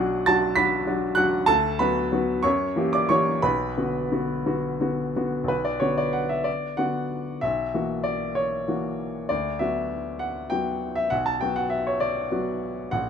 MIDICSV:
0, 0, Header, 1, 2, 480
1, 0, Start_track
1, 0, Key_signature, 2, "minor"
1, 0, Tempo, 606673
1, 1173, Time_signature, 6, 3, 24, 8
1, 1173, Tempo, 643087
1, 1653, Tempo, 658617
1, 2613, Tempo, 683371
1, 4053, Tempo, 641711
1, 5973, Tempo, 615385
1, 7413, Tempo, 602410
1, 9955, End_track
2, 0, Start_track
2, 0, Title_t, "Grand piano"
2, 0, Program_c, 0, 0
2, 0, Control_c, 0, 64, 127
2, 0, Note_on_c, 0, 35, 75
2, 0, Note_on_c, 0, 54, 56
2, 0, Note_on_c, 0, 62, 57
2, 0, Note_on_c, 0, 66, 58
2, 0, Note_on_c, 0, 78, 92
2, 0, Note_on_c, 0, 90, 127
2, 178, Note_off_c, 0, 78, 0
2, 186, Note_off_c, 0, 54, 0
2, 187, Note_off_c, 0, 62, 0
2, 189, Note_off_c, 0, 66, 0
2, 204, Note_off_c, 0, 90, 0
2, 207, Note_on_c, 0, 93, 114
2, 215, Note_on_c, 0, 54, 54
2, 216, Note_on_c, 0, 81, 89
2, 219, Note_on_c, 0, 62, 53
2, 224, Note_on_c, 0, 66, 61
2, 426, Note_off_c, 0, 54, 0
2, 429, Note_off_c, 0, 62, 0
2, 431, Note_off_c, 0, 66, 0
2, 434, Note_off_c, 0, 81, 0
2, 439, Note_on_c, 0, 95, 109
2, 446, Note_off_c, 0, 93, 0
2, 447, Note_on_c, 0, 83, 76
2, 449, Note_on_c, 0, 54, 57
2, 449, Note_on_c, 0, 62, 57
2, 450, Note_on_c, 0, 66, 63
2, 663, Note_off_c, 0, 54, 0
2, 663, Note_off_c, 0, 62, 0
2, 664, Note_off_c, 0, 66, 0
2, 686, Note_on_c, 0, 54, 54
2, 689, Note_on_c, 0, 62, 55
2, 692, Note_on_c, 0, 66, 58
2, 894, Note_off_c, 0, 83, 0
2, 902, Note_off_c, 0, 54, 0
2, 904, Note_off_c, 0, 62, 0
2, 905, Note_off_c, 0, 66, 0
2, 909, Note_on_c, 0, 90, 116
2, 920, Note_on_c, 0, 54, 59
2, 922, Note_off_c, 0, 95, 0
2, 923, Note_on_c, 0, 62, 57
2, 925, Note_on_c, 0, 78, 90
2, 931, Note_on_c, 0, 66, 65
2, 1144, Note_off_c, 0, 54, 0
2, 1146, Note_off_c, 0, 62, 0
2, 1150, Note_off_c, 0, 66, 0
2, 1154, Note_off_c, 0, 78, 0
2, 1158, Note_on_c, 0, 81, 118
2, 1164, Note_off_c, 0, 90, 0
2, 1167, Note_on_c, 0, 38, 71
2, 1168, Note_on_c, 0, 69, 86
2, 1186, Control_c, 0, 64, 0
2, 1188, Note_off_c, 0, 35, 0
2, 1301, Control_c, 0, 64, 127
2, 1392, Note_off_c, 0, 69, 0
2, 1402, Note_off_c, 0, 38, 0
2, 1403, Note_on_c, 0, 83, 94
2, 1404, Note_off_c, 0, 81, 0
2, 1408, Note_on_c, 0, 54, 56
2, 1412, Note_on_c, 0, 71, 69
2, 1413, Note_on_c, 0, 59, 51
2, 1415, Note_on_c, 0, 66, 56
2, 1627, Note_off_c, 0, 54, 0
2, 1630, Note_off_c, 0, 59, 0
2, 1631, Note_off_c, 0, 66, 0
2, 1650, Note_on_c, 0, 54, 52
2, 1652, Note_on_c, 0, 59, 56
2, 1655, Note_on_c, 0, 66, 57
2, 1860, Note_off_c, 0, 71, 0
2, 1863, Note_off_c, 0, 54, 0
2, 1864, Note_off_c, 0, 59, 0
2, 1866, Note_off_c, 0, 66, 0
2, 1872, Note_on_c, 0, 85, 107
2, 1879, Note_on_c, 0, 42, 74
2, 1880, Note_on_c, 0, 73, 77
2, 1885, Note_off_c, 0, 83, 0
2, 1901, Control_c, 0, 64, 0
2, 2032, Control_c, 0, 64, 127
2, 2113, Note_off_c, 0, 42, 0
2, 2115, Note_on_c, 0, 52, 51
2, 2119, Note_on_c, 0, 58, 51
2, 2123, Note_on_c, 0, 67, 58
2, 2216, Note_off_c, 0, 73, 0
2, 2237, Note_off_c, 0, 85, 0
2, 2238, Note_on_c, 0, 86, 91
2, 2251, Note_on_c, 0, 74, 68
2, 2337, Note_off_c, 0, 52, 0
2, 2339, Note_off_c, 0, 58, 0
2, 2341, Note_off_c, 0, 67, 0
2, 2354, Note_on_c, 0, 85, 102
2, 2361, Note_off_c, 0, 74, 0
2, 2362, Note_on_c, 0, 52, 53
2, 2363, Note_off_c, 0, 86, 0
2, 2363, Note_on_c, 0, 73, 79
2, 2367, Note_on_c, 0, 58, 49
2, 2368, Note_on_c, 0, 67, 56
2, 2585, Note_off_c, 0, 52, 0
2, 2588, Note_off_c, 0, 58, 0
2, 2589, Note_off_c, 0, 67, 0
2, 2593, Note_off_c, 0, 73, 0
2, 2599, Note_on_c, 0, 83, 98
2, 2602, Note_on_c, 0, 35, 68
2, 2604, Note_on_c, 0, 71, 72
2, 2606, Note_off_c, 0, 85, 0
2, 2627, Control_c, 0, 64, 0
2, 2770, Control_c, 0, 64, 127
2, 2840, Note_off_c, 0, 35, 0
2, 2846, Note_on_c, 0, 50, 49
2, 2847, Note_on_c, 0, 59, 49
2, 2853, Note_on_c, 0, 66, 51
2, 3065, Note_off_c, 0, 50, 0
2, 3065, Note_off_c, 0, 59, 0
2, 3069, Note_off_c, 0, 66, 0
2, 3087, Note_on_c, 0, 50, 47
2, 3090, Note_on_c, 0, 59, 48
2, 3095, Note_on_c, 0, 66, 51
2, 3305, Note_off_c, 0, 50, 0
2, 3306, Note_off_c, 0, 59, 0
2, 3309, Note_off_c, 0, 66, 0
2, 3328, Note_on_c, 0, 59, 47
2, 3330, Note_on_c, 0, 50, 51
2, 3334, Note_on_c, 0, 66, 55
2, 3547, Note_off_c, 0, 50, 0
2, 3547, Note_off_c, 0, 59, 0
2, 3550, Note_off_c, 0, 66, 0
2, 3570, Note_on_c, 0, 50, 47
2, 3576, Note_on_c, 0, 59, 49
2, 3578, Note_on_c, 0, 66, 51
2, 3784, Note_off_c, 0, 71, 0
2, 3790, Note_off_c, 0, 50, 0
2, 3793, Note_off_c, 0, 59, 0
2, 3794, Note_off_c, 0, 66, 0
2, 3809, Note_off_c, 0, 83, 0
2, 3821, Note_on_c, 0, 50, 48
2, 3823, Note_on_c, 0, 59, 48
2, 3824, Note_on_c, 0, 66, 53
2, 4015, Note_on_c, 0, 35, 53
2, 4032, Note_off_c, 0, 50, 0
2, 4034, Note_off_c, 0, 59, 0
2, 4034, Note_off_c, 0, 66, 0
2, 4046, Note_on_c, 0, 71, 84
2, 4067, Control_c, 0, 64, 0
2, 4168, Note_on_c, 0, 74, 75
2, 4173, Note_off_c, 0, 71, 0
2, 4179, Control_c, 0, 64, 127
2, 4271, Note_off_c, 0, 35, 0
2, 4281, Note_on_c, 0, 73, 79
2, 4290, Note_on_c, 0, 50, 40
2, 4293, Note_on_c, 0, 59, 38
2, 4295, Note_off_c, 0, 74, 0
2, 4295, Note_on_c, 0, 66, 42
2, 4412, Note_off_c, 0, 73, 0
2, 4414, Note_on_c, 0, 74, 81
2, 4528, Note_on_c, 0, 78, 79
2, 4539, Note_off_c, 0, 74, 0
2, 4651, Note_on_c, 0, 76, 70
2, 4655, Note_off_c, 0, 78, 0
2, 4763, Note_on_c, 0, 74, 74
2, 4776, Note_off_c, 0, 76, 0
2, 4794, Control_c, 0, 64, 0
2, 4905, Control_c, 0, 64, 127
2, 4985, Note_off_c, 0, 50, 0
2, 4987, Note_off_c, 0, 59, 0
2, 4988, Note_off_c, 0, 66, 0
2, 5009, Note_on_c, 0, 78, 84
2, 5011, Note_off_c, 0, 74, 0
2, 5017, Note_on_c, 0, 50, 40
2, 5020, Note_on_c, 0, 59, 42
2, 5024, Note_on_c, 0, 66, 45
2, 5467, Note_off_c, 0, 50, 0
2, 5468, Note_off_c, 0, 59, 0
2, 5470, Note_off_c, 0, 66, 0
2, 5490, Note_on_c, 0, 76, 86
2, 5492, Note_off_c, 0, 78, 0
2, 5500, Note_on_c, 0, 35, 54
2, 5512, Control_c, 0, 64, 0
2, 5651, Control_c, 0, 64, 127
2, 5729, Note_off_c, 0, 35, 0
2, 5735, Note_on_c, 0, 52, 38
2, 5737, Note_on_c, 0, 58, 38
2, 5741, Note_on_c, 0, 66, 44
2, 5955, Note_on_c, 0, 74, 75
2, 5968, Note_off_c, 0, 76, 0
2, 6201, Note_on_c, 0, 73, 78
2, 6208, Note_off_c, 0, 74, 0
2, 6427, Note_off_c, 0, 52, 0
2, 6428, Note_off_c, 0, 58, 0
2, 6430, Note_off_c, 0, 66, 0
2, 6456, Note_on_c, 0, 52, 38
2, 6460, Note_on_c, 0, 66, 45
2, 6461, Note_on_c, 0, 58, 40
2, 6905, Note_off_c, 0, 52, 0
2, 6907, Note_off_c, 0, 58, 0
2, 6907, Note_off_c, 0, 66, 0
2, 6929, Note_off_c, 0, 73, 0
2, 6932, Note_on_c, 0, 74, 83
2, 6942, Note_on_c, 0, 38, 54
2, 6953, Control_c, 0, 64, 0
2, 7067, Control_c, 0, 64, 127
2, 7168, Note_on_c, 0, 76, 79
2, 7171, Note_off_c, 0, 38, 0
2, 7174, Note_off_c, 0, 74, 0
2, 7175, Note_on_c, 0, 54, 37
2, 7178, Note_on_c, 0, 59, 38
2, 7184, Note_on_c, 0, 66, 43
2, 7642, Note_on_c, 0, 78, 81
2, 7649, Note_off_c, 0, 76, 0
2, 7861, Note_off_c, 0, 54, 0
2, 7863, Note_off_c, 0, 59, 0
2, 7866, Note_off_c, 0, 66, 0
2, 7884, Note_on_c, 0, 79, 86
2, 7888, Note_off_c, 0, 78, 0
2, 7895, Note_on_c, 0, 54, 41
2, 7897, Note_on_c, 0, 59, 40
2, 7902, Note_on_c, 0, 66, 43
2, 8249, Note_on_c, 0, 76, 82
2, 8253, Note_off_c, 0, 79, 0
2, 8347, Note_off_c, 0, 54, 0
2, 8348, Note_off_c, 0, 59, 0
2, 8350, Note_off_c, 0, 66, 0
2, 8366, Note_on_c, 0, 78, 96
2, 8373, Note_off_c, 0, 76, 0
2, 8376, Note_on_c, 0, 35, 56
2, 8392, Control_c, 0, 64, 0
2, 8490, Note_on_c, 0, 81, 81
2, 8491, Note_off_c, 0, 78, 0
2, 8514, Control_c, 0, 64, 127
2, 8608, Note_on_c, 0, 79, 86
2, 8609, Note_off_c, 0, 35, 0
2, 8613, Note_off_c, 0, 81, 0
2, 8620, Note_on_c, 0, 54, 41
2, 8622, Note_on_c, 0, 59, 43
2, 8624, Note_on_c, 0, 66, 45
2, 8730, Note_on_c, 0, 78, 85
2, 8731, Note_off_c, 0, 79, 0
2, 8841, Note_on_c, 0, 76, 76
2, 8852, Note_off_c, 0, 78, 0
2, 8967, Note_off_c, 0, 76, 0
2, 8976, Note_on_c, 0, 73, 76
2, 9084, Note_on_c, 0, 74, 85
2, 9094, Note_off_c, 0, 73, 0
2, 9303, Note_off_c, 0, 54, 0
2, 9304, Note_off_c, 0, 59, 0
2, 9305, Note_off_c, 0, 66, 0
2, 9329, Note_on_c, 0, 54, 44
2, 9333, Note_on_c, 0, 59, 42
2, 9336, Note_on_c, 0, 66, 48
2, 9779, Note_off_c, 0, 54, 0
2, 9781, Note_off_c, 0, 59, 0
2, 9783, Note_off_c, 0, 66, 0
2, 9808, Note_off_c, 0, 74, 0
2, 9809, Note_on_c, 0, 78, 91
2, 9817, Note_on_c, 0, 34, 60
2, 9825, Control_c, 0, 64, 0
2, 9936, Control_c, 0, 64, 127
2, 9955, Note_off_c, 0, 34, 0
2, 9955, Note_off_c, 0, 78, 0
2, 9955, End_track
0, 0, End_of_file